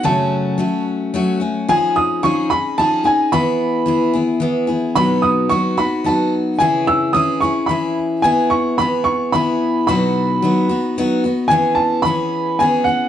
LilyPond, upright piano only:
\new Staff \with { instrumentName = "Upright piano" } { \time 3/4 \key e \major \tempo 4 = 110 a''4. r4. | gis''8 dis'''8 cis'''8 b''8 a''8 gis''8 | b''4. r4. | b''8 dis'''8 cis'''8 b''8 a''8 r8 |
gis''8 e'''8 dis'''8 cis'''8 b''8 r8 | gis''8 cis'''8 b''8 cis'''8 b''4 | b''2 r4 | gis''8 a''8 b''4 gis''8 fis''8 | }